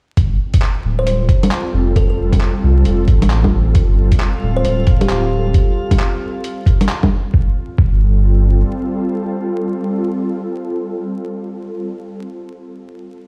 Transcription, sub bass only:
0.17 G1
0.84 D1
1.73 F1
2.63 C2
2.86 F1
3.08 A1
3.75 G1
4.43 D1
4.65 D1
7.34 G1
7.78 G1

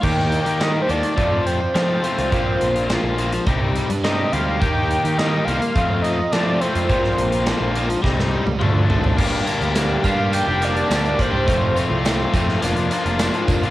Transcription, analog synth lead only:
0.04 G5 D6
0.62 D#5 A#5
0.82 C5 G5
0.90 D5 A5
1.46 C5 G5
1.74 C5 G5
2.04 C5 G5
4.04 D#5 A#5
4.32 F5 C6
4.60 G5 D6
5.18 D#5 A#5
5.45 F5 C6
6.02 D#5 A#5
6.32 D5 A5
6.60 C5 G5
10.05 F5 C6
10.34 G5 D6
10.64 D5 A5
11.21 C5 G5

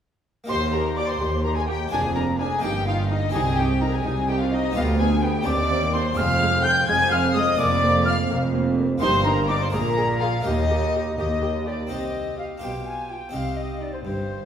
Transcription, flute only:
0.49 C6
0.72 A#5
0.97 D6
1.08 C6
1.44 A#5
1.56 G#5
1.67 G5
1.91 G#5
2.15 A#5
2.39 G#5
2.62 G5
2.86 F5
3.09 D#5
3.33 G#5
3.57 G5
3.81 A#5
3.93 G#5
4.28 G5
4.40 F5
4.51 D#5
4.75 F5
4.99 G#5
5.23 G5
5.46 D6
5.93 C6
6.17 F6
6.64 G6
6.88 G#6
7.12 F6
7.35 D#6
7.59 D6
8.06 F6
9.01 C6
9.25 A#5
9.49 D6
9.60 C6
9.72 A#5
10.21 F5
10.45 D#5
11.18 D#5
11.67 D5
11.91 D#5
12.39 F5
12.63 G5
12.86 G#5
13.10 G5
13.34 F5
13.57 D#5
13.81 D5
13.93 C5
14.04 C5

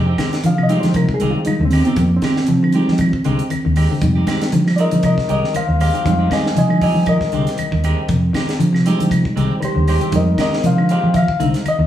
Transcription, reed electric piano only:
0.46 F5
0.63 D#5
0.69 G3 G#3 D#4
0.80 C5
0.96 A#4
1.14 G#4
1.30 F4
1.45 G3 G#3 D#4
1.65 C4
1.82 B3
2.00 A#3
2.16 C4
2.73 G3 G#3 D#4
4.01 G3 G#3 D#4
4.76 D5
4.80 A#4 D#5
5.05 A#4 D#5
5.30 A#4 D#5
5.56 C5 F5
5.81 C5 F5
6.04 G3 G#3 D#4 C5 F5
6.33 D#5 G#5
6.58 D#5 G#5
6.83 D#5 G#5
7.08 A#4 D#5
8.85 G3 G#3 D#4
9.60 G4 B4
9.65 C5
9.89 G4 C5
10.13 G3 G#3 D#4 A#4 D#5
10.40 A#4 D#5
10.66 C5 F5
10.91 C5 F5
11.14 E5 F5
11.40 G3 G#3 D#4
11.68 D#5

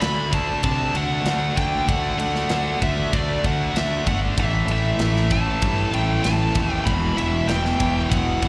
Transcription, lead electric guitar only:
0.01 B5
0.34 A5
0.65 A5
0.97 F#5
1.57 G5
1.89 F#5
2.19 F#5
2.83 E5
3.13 D5
3.46 F#5
3.77 E5
4.08 F#5
4.40 E5
4.72 E5
5.32 A5
5.95 G5
6.24 A5
6.73 G5
6.85 B5
7.17 E5
7.47 G5
8.10 F#5

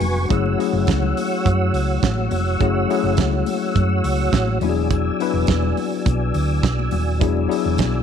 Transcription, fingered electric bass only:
0.00 F1
0.30 F#1
0.73 F#1
0.88 C#2
1.46 F#2
1.73 C#2
2.03 A1
2.31 F1
2.61 F#1
3.03 F#1
3.18 C#2
3.76 F#2
4.04 C#2
4.33 A1
4.60 E1
5.34 E1
5.48 E1
6.06 B1
6.35 D2
6.63 B1
6.92 D#1
7.21 E1
7.65 E1
7.79 B1

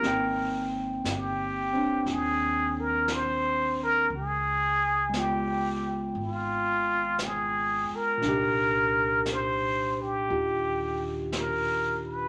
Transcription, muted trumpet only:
Already playing: A#4
1.10 G4
2.12 G#4
2.80 A#4
3.13 C5
3.83 A#4
4.16 G#4
5.19 G4
6.23 F4
7.26 G#4
7.95 A#4
9.32 C5
10.02 G4
11.38 A#4
12.07 B4

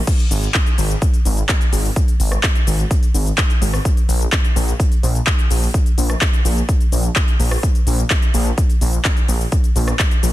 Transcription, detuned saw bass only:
0.31 G#1
0.78 G#1
1.25 G#1
1.73 G#1
2.20 G#1
2.67 G#1
3.14 G#1
3.62 G#1
4.09 A#1
4.56 A#1
5.03 A#1
5.51 A#1
5.98 A#1
6.45 A#1
6.92 A#1
7.40 A#1
7.87 A#1
8.34 A#1
8.81 A#1
9.29 A#1
9.76 A#1
10.23 A#1

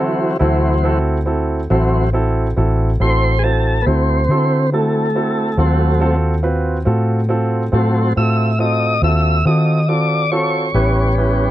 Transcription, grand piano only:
Already playing: C4 E4 F#4 A4
0.39 C4 E4 F#4 A4
0.84 C4 E4 F#4 A4
1.26 C4 E4 F#4 A4
1.70 C4 E4 F#4 A4
2.13 C4 E4 F#4 A4
2.56 C4 E4 F#4 A4
3.00 C4 E4 F#4 A4
3.43 C4 E4 F#4 C5
3.86 C4 E4 F#4 A4
4.30 C4 E4 F#4 A4
4.72 C4 E4 F#4 A4
5.15 C4 E4 F#4 A4
5.57 C4 F4 F#4 A4
6.00 C4 F4 F#4 A4
6.43 C4 F4 F#4 B4
6.85 C4 F4 F#4 A4
7.29 C4 F4 F#4 A4
7.72 C4 F4 F#4 A4
8.16 C4 F4 F#4 A4
8.59 C4 F4 F#4 A4
9.02 C4 F4 F#4 A4
9.45 C4 F4 F#4 A4
9.88 C4 F4 F#4 A4
10.32 C4 F4 F#4 A4
10.74 C#4 E4 G4 B4
11.18 C#4 E4 G4 B4

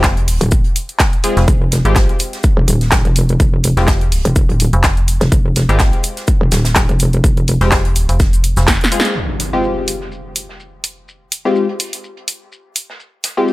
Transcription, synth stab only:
Already playing: G#3 C4 F4 G4
1.24 G#3 C4 F4 G#4
1.85 G#3 C4 F4 G4
3.77 G#3 C4 F4 G4
5.69 G#3 C4 F4 G4
7.61 G#3 C4 F4 G4
8.92 G#3 C4 F4 G#4
9.53 G#3 C4 F4 G4
11.45 G#3 C4 F4 G4
13.37 G#3 C4 F4 G4

